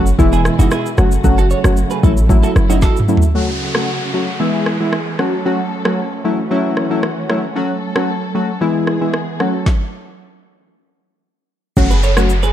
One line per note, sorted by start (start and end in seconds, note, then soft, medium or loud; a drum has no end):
0.00 0.12 F#1 loud
0.00 0.18 C#3 medium
0.00 0.16 F#3 medium
0.00 0.16 A3 medium
0.00 0.18 F#4 medium
0.07 shaker medium
0.18 0.49 E1 loud
0.18 0.97 B2 medium
0.18 0.55 E3 loud
0.18 0.97 E3 medium
0.18 0.56 G#3 medium
0.18 0.97 G#3 medium
0.18 0.56 B3 medium
0.18 0.97 E4 medium
0.18 0.56 E4 loud
0.18 kick loud
0.18 shaker medium
0.33 0.40 E4 medium
0.33 0.40 G#4 medium
0.33 shaker medium
0.45 cross-stick loud
0.45 shaker medium
0.59 0.68 F#1 loud
0.59 0.73 E3 medium
0.59 0.73 G#3 medium
0.59 0.73 B3 medium
0.59 0.67 D#4 medium
0.59 0.73 E4 medium
0.59 0.66 F#4 medium
0.59 shaker loud
0.71 0.87 E4 medium
0.71 0.86 G#4 medium
0.71 cross-stick loud
0.71 shaker medium
0.86 shaker medium
0.98 1.17 F#1 loud
0.98 3.32 C#3 medium
0.98 1.13 F#3 medium
0.98 3.32 F#3 medium
0.98 1.13 A3 medium
0.98 3.32 A3 medium
0.98 1.13 C#4 medium
0.98 1.13 F#4 medium
0.98 2.02 F#4 medium
0.98 cross-stick loud
0.98 shaker medium
1.12 shaker medium
1.24 1.54 F#1 loud
1.24 1.39 F#3 medium
1.24 1.39 A3 medium
1.24 1.39 C#4 medium
1.24 1.39 F#4 loud
1.24 kick loud
1.24 shaker medium
1.38 1.46 F#4 medium
1.38 1.45 A4 medium
1.38 shaker medium
1.51 1.59 A4 medium
1.51 1.58 C#5 medium
1.51 shaker medium
1.64 1.84 F#1 medium
1.64 1.78 F#3 medium
1.64 1.78 A3 medium
1.64 1.78 C#4 medium
1.64 1.78 F#4 medium
1.64 cross-stick loud
1.64 shaker medium
1.77 shaker medium
1.90 1.98 G#4 medium
1.90 1.98 B4 medium
1.90 shaker soft
2.03 2.42 A1 loud
2.03 2.18 F#3 medium
2.03 2.18 A3 medium
2.03 2.18 C#4 medium
2.03 3.34 E4 medium
2.03 2.18 E4 medium
2.03 2.12 F#4 medium
2.03 2.11 A4 medium
2.03 kick loud
2.03 shaker medium
2.17 shaker medium
2.29 2.66 F#3 loud
2.29 2.66 A3 medium
2.29 2.66 C#4 medium
2.29 2.66 E4 loud
2.29 kick loud
2.29 shaker medium
2.43 2.51 F#4 medium
2.43 2.50 A4 medium
2.43 shaker medium
2.56 2.85 F#1 loud
2.56 cross-stick loud
2.56 shaker medium
2.69 2.83 F#3 medium
2.69 2.83 A3 medium
2.69 2.84 C#4 medium
2.69 2.77 D#4 medium
2.69 2.84 E4 medium
2.69 2.77 F#4 medium
2.69 shaker loud
2.82 2.98 F#4 medium
2.82 2.97 A4 medium
2.82 kick loud
2.82 snare medium
2.82 shaker medium
2.97 mid tom medium
2.97 shaker medium
3.08 3.23 F#3 medium
3.08 3.23 A3 medium
3.08 3.24 C#4 medium
3.08 3.24 E4 medium
3.08 shaker medium
3.17 floor tom loud
3.22 shaker medium
3.35 4.39 C#3 medium
3.35 3.50 F#3 medium
3.35 4.39 F#3 medium
3.35 3.50 A3 medium
3.35 4.39 A3 medium
3.35 3.50 C#4 medium
3.35 4.39 F#4 medium
3.35 3.50 F#4 medium
3.35 downlifter medium
3.74 3.89 F#3 medium
3.74 3.89 A3 medium
3.74 3.89 C#4 medium
3.74 3.89 F#4 medium
3.74 cross-stick loud
4.14 4.29 F#3 medium
4.14 4.29 A3 medium
4.14 4.29 C#4 medium
4.14 4.29 F#4 medium
4.40 4.77 E3 medium
4.40 5.18 E3 medium
4.40 4.77 G#3 medium
4.40 5.18 G#3 medium
4.40 4.77 B3 medium
4.40 5.18 B3 medium
4.40 4.77 E4 loud
4.40 5.18 G#4 medium
4.66 cross-stick medium
4.80 4.94 E3 medium
4.80 4.94 G#3 medium
4.80 4.94 B3 medium
4.80 4.94 E4 medium
4.93 cross-stick medium
5.19 5.34 F#3 medium
5.19 6.23 F#3 medium
5.19 5.34 A3 medium
5.19 8.58 A3 medium
5.19 8.58 C#4 medium
5.19 5.34 C#4 medium
5.19 5.34 F#4 medium
5.19 6.23 A4 medium
5.19 cross-stick medium
5.45 5.60 F#3 medium
5.45 5.60 A3 medium
5.45 5.61 C#4 medium
5.45 5.61 F#4 medium
5.85 5.99 F#3 medium
5.85 5.99 A3 medium
5.85 6.00 C#4 medium
5.85 6.00 F#4 medium
5.85 cross-stick loud
6.24 7.55 E3 medium
6.24 6.39 F#3 medium
6.24 6.39 A3 medium
6.24 6.39 C#4 medium
6.24 6.40 E4 medium
6.24 7.55 F#4 medium
6.51 6.87 F#3 medium
6.51 6.87 A3 medium
6.51 6.88 C#4 medium
6.51 6.88 E4 medium
6.77 cross-stick medium
6.90 7.05 F#3 medium
6.90 7.05 A3 medium
6.90 7.05 C#4 medium
6.90 7.05 E4 medium
7.03 cross-stick loud
7.29 7.44 F#3 medium
7.29 7.45 A3 medium
7.29 7.45 C#4 medium
7.29 7.45 E4 medium
7.29 cross-stick medium
7.55 7.71 F#3 medium
7.55 8.60 F#3 medium
7.55 7.71 A3 medium
7.55 7.71 C#4 medium
7.55 7.71 F#4 medium
7.55 8.60 A4 medium
7.96 8.10 F#3 medium
7.96 8.10 A3 medium
7.96 8.10 C#4 medium
7.96 8.10 F#4 medium
7.96 cross-stick loud
8.35 8.50 F#3 medium
8.35 8.50 A3 medium
8.35 8.50 C#4 medium
8.35 8.50 F#4 medium
8.61 8.98 E3 medium
8.61 9.39 E3 medium
8.61 8.98 G#3 medium
8.61 9.39 G#3 medium
8.61 8.98 B3 medium
8.61 9.39 B3 medium
8.61 8.98 E4 loud
8.61 9.39 G#4 medium
8.87 cross-stick medium
9.01 9.15 E3 medium
9.01 9.15 G#3 medium
9.01 9.15 B3 medium
9.01 9.15 E4 medium
9.14 cross-stick loud
9.40 9.55 F#3 medium
9.40 9.66 F#3 medium
9.40 9.66 A3 medium
9.40 9.55 A3 medium
9.40 9.66 C#4 medium
9.40 9.55 C#4 medium
9.40 9.55 F#4 medium
9.40 9.66 A4 medium
9.40 cross-stick medium
9.66 kick loud
9.66 snare medium
11.77 12.52 F#1 loud
11.77 11.92 F#3 medium
11.77 11.92 A3 medium
11.77 11.92 C#4 medium
11.77 11.92 F#4 loud
11.77 kick loud
11.77 crash loud
11.77 downlifter medium
11.77 shaker medium
11.91 11.98 G#4 medium
11.91 11.98 B4 medium
11.91 shaker medium
12.03 12.12 A4 medium
12.03 12.11 C#5 medium
12.03 shaker medium
12.17 12.31 F#3 medium
12.17 12.31 A3 medium
12.17 12.31 C#4 medium
12.17 12.31 F#4 medium
12.17 cross-stick loud
12.17 shaker medium
12.29 shaker medium
12.43 12.51 G#4 medium
12.43 12.50 B4 medium
12.43 shaker soft